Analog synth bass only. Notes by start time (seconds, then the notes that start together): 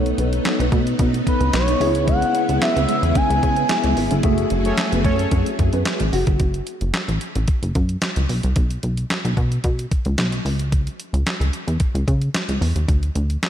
Already playing: B1
0.18 B1
0.59 B1
0.72 B2
0.99 B2
1.40 C#2
1.53 B1
1.80 C#2
2.49 C#2
2.76 C#2
3.03 E2
3.30 C#2
3.43 C#3
3.84 C#2
3.97 G#1
4.11 G1
4.23 F#1
4.51 F#1
4.92 F#1
5.05 F#2
5.32 F#2
5.59 F#2
5.73 F#2
6.00 A1
6.13 F#1
6.27 G1
6.40 F#1
6.81 F#1
7.08 A1
7.36 A1
7.63 F#1
7.75 F#2
8.17 C#2
8.29 B1
8.44 C2
8.56 B1
8.83 B1
9.25 B1
9.37 B2
9.64 B2
10.06 C#2
10.18 B1
10.45 C#2
11.13 C#2
11.40 C#2
11.67 E2
11.95 C#2
12.08 C#3
12.49 C#2
12.61 E2
12.76 D#2
12.88 D2
13.15 D2